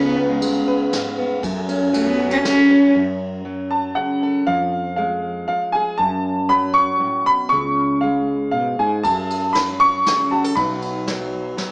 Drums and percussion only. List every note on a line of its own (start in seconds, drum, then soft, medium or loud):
0.42 ride medium
0.93 snare medium
0.93 ride medium
1.43 kick loud
1.43 ride medium
1.69 ride soft
1.94 ride medium
2.45 snare medium
2.45 ride soft
9.04 kick medium
9.04 ride soft
9.30 ride soft
9.55 snare medium
9.55 ride soft
10.06 snare medium
10.06 ride soft
10.56 kick medium
10.56 ride soft
10.82 ride soft
11.07 snare medium
11.07 ride soft
11.58 snare medium
11.58 ride soft